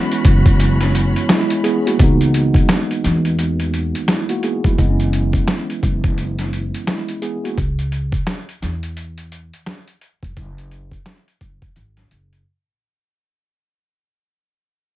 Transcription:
Already playing: E3 G#3 B3 C#4 E4 F#4 C#5 B5
0.12 closed hi-hat
0.25 F#1, kick, closed hi-hat
0.46 kick, closed hi-hat
0.60 closed hi-hat
0.81 snare, closed hi-hat
0.95 closed hi-hat
1.16 closed hi-hat
1.29 G#3 E4, snare, closed hi-hat
1.50 closed hi-hat
1.64 B3 G#4, closed hi-hat
1.86 A#3 F#4, closed hi-hat
1.97 C#2 E3 G#3, kick, closed hi-hat
2.02 B3 D#4
2.21 closed hi-hat
2.34 closed hi-hat
2.54 kick, closed hi-hat
2.69 snare, closed hi-hat
2.91 closed hi-hat
3.04 E2, snare, closed hi-hat
3.25 closed hi-hat
3.39 closed hi-hat
3.60 closed hi-hat
3.74 closed hi-hat
3.95 closed hi-hat
4.08 G#3 E4, snare, closed hi-hat
4.29 A#3 F#4, closed hi-hat
4.43 B3 G#4, closed hi-hat
4.64 F1 G#3 E4, kick, closed hi-hat
4.76 F#1 E3 G#3, kick, closed hi-hat
4.80 B3 C4
4.89 C#4
5.00 closed hi-hat
5.13 closed hi-hat
5.33 kick, closed hi-hat
5.47 snare, closed hi-hat
5.70 closed hi-hat
5.83 F#1, kick, closed hi-hat
6.04 kick, closed hi-hat
6.18 closed hi-hat
6.39 snare, closed hi-hat
6.53 closed hi-hat
6.74 closed hi-hat
6.87 G#3 E4, snare, closed hi-hat
7.08 closed hi-hat
7.22 B3 G#4, closed hi-hat
7.44 A#3 F#4, closed hi-hat
7.58 C#2, kick, closed hi-hat
7.79 closed hi-hat
7.92 closed hi-hat
8.12 kick, closed hi-hat
8.27 snare, closed hi-hat
8.49 closed hi-hat
8.62 E2, snare, closed hi-hat
8.83 closed hi-hat
8.97 closed hi-hat
9.18 closed hi-hat
9.32 closed hi-hat
9.54 closed hi-hat
9.66 snare, closed hi-hat
9.88 closed hi-hat
10.01 closed hi-hat
10.23 F1, kick, closed hi-hat
10.37 F#1, kick, closed hi-hat
10.58 closed hi-hat
10.71 closed hi-hat
10.91 kick, closed hi-hat
11.06 snare, closed hi-hat
11.28 closed hi-hat
11.41 F#1, kick, closed hi-hat
11.62 kick, closed hi-hat
11.76 G#1, closed hi-hat
11.97 snare, closed hi-hat
12.11 F#1, closed hi-hat
12.33 closed hi-hat

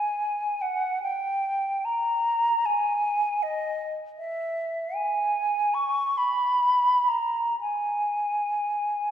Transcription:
Already playing: G#5
0.61 F#5
1.02 G5
1.85 A#5
2.65 G#5
3.42 D#5
4.18 E5
4.95 G#5
5.74 C#6
6.17 B5
7.08 A#5
7.60 G#5

